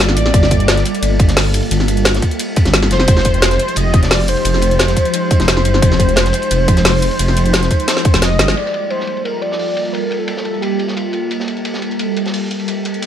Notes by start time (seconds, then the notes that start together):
Already playing: G1 G3 A#3 F4 A4
0.00 D5
0.09 snare
0.16 A1 D5, closed hi-hat, ride
0.26 snare
0.34 G1, kick, closed hi-hat, ride
0.43 snare
0.51 kick, closed hi-hat, ride
0.60 closed hi-hat
0.68 snare, closed hi-hat, ride
0.77 snare, closed hi-hat
0.86 closed hi-hat, ride
0.95 closed hi-hat, ride
1.02 G1, closed hi-hat, ride
1.19 kick, closed hi-hat, ride
1.28 snare, closed hi-hat
1.37 snare, closed hi-hat, open hi-hat
1.54 closed hi-hat, ride
1.63 ride
1.71 G1, closed hi-hat, ride
1.80 snare
1.88 closed hi-hat, ride
1.97 closed hi-hat
2.05 snare, closed hi-hat, ride
2.14 snare, closed hi-hat
2.22 kick, closed hi-hat, ride
2.31 closed hi-hat
2.39 closed hi-hat, ride
2.56 kick, closed hi-hat, ride
2.65 G1, snare, closed hi-hat
2.74 snare, closed hi-hat, ride
2.82 snare, ride
2.91 F1 F3 G#3 D#4 G4 C5, snare, closed hi-hat
3.00 snare, ride
3.08 F1, kick, closed hi-hat, ride
3.17 snare
3.25 kick, closed hi-hat, ride
3.34 closed hi-hat
3.42 snare, closed hi-hat, ride
3.51 snare, closed hi-hat
3.59 closed hi-hat, ride
3.68 closed hi-hat, ride
3.76 F1 D#5, closed hi-hat, ride
3.93 kick, closed hi-hat, ride
4.03 D5, snare, closed hi-hat
4.11 snare, closed hi-hat, open hi-hat
4.28 C5, closed hi-hat, ride
4.37 ride
4.45 F1, closed hi-hat, ride
4.54 snare
4.62 closed hi-hat, ride
4.71 closed hi-hat
4.79 snare, closed hi-hat, ride
4.88 snare, closed hi-hat
4.97 kick, closed hi-hat, ride
5.05 closed hi-hat
5.14 closed hi-hat, ride
5.31 kick, closed hi-hat, ride
5.40 F1, snare, closed hi-hat
5.48 snare, closed hi-hat, ride
5.57 snare
5.65 G1 G#4, closed hi-hat, ride
5.74 snare
5.82 F1, kick, closed hi-hat, ride
5.92 snare
5.99 kick, closed hi-hat, ride
6.09 closed hi-hat
6.16 snare, closed hi-hat, ride
6.25 snare, closed hi-hat
6.33 closed hi-hat, ride
6.42 closed hi-hat, ride
6.51 F1, closed hi-hat, ride
6.68 kick, closed hi-hat, ride
6.77 snare, closed hi-hat
6.85 snare, closed hi-hat, open hi-hat
7.02 closed hi-hat, ride
7.11 ride
7.19 F1, closed hi-hat, ride
7.28 snare
7.37 closed hi-hat, ride
7.46 closed hi-hat
7.53 snare, closed hi-hat, ride
7.63 snare, closed hi-hat
7.71 kick, closed hi-hat, ride
7.80 closed hi-hat
7.88 snare, closed hi-hat, ride
7.97 snare
8.05 kick, closed hi-hat, ride
8.13 F1, snare, closed hi-hat, ride
8.22 D#5, snare, closed hi-hat, ride
8.39 G1, snare, closed hi-hat, ride
8.48 snare
8.56 G3 A#3 F4 A4 D5, closed hi-hat, ride
8.66 snare
8.73 closed hi-hat, ride
8.82 closed hi-hat
8.90 C5, closed hi-hat, ride
9.00 snare, closed hi-hat
9.07 closed hi-hat, ride
9.17 closed hi-hat, ride
9.25 A#4, closed hi-hat, ride
9.42 D5, closed hi-hat, ride
9.51 snare, closed hi-hat
9.59 closed hi-hat, open hi-hat
9.77 closed hi-hat, ride
9.85 ride
9.93 A#4, closed hi-hat, ride
10.11 closed hi-hat, ride
10.19 A4, closed hi-hat
10.28 closed hi-hat, ride
10.37 snare, closed hi-hat
10.44 A4, closed hi-hat, ride
10.54 closed hi-hat
10.62 G4, closed hi-hat, ride
10.79 closed hi-hat, ride
10.88 snare, closed hi-hat
10.96 F4, closed hi-hat, ride
11.13 closed hi-hat, ride
11.31 G4, closed hi-hat, ride
11.40 snare
11.48 closed hi-hat, ride
11.57 closed hi-hat
11.65 closed hi-hat, ride
11.74 snare, closed hi-hat
11.82 closed hi-hat, ride
11.91 closed hi-hat, ride
11.99 closed hi-hat, ride
12.17 closed hi-hat, ride
12.26 snare, closed hi-hat
12.33 closed hi-hat, open hi-hat
12.51 closed hi-hat, ride
12.60 ride
12.68 closed hi-hat, ride
12.85 closed hi-hat, ride
12.94 closed hi-hat
13.02 closed hi-hat, ride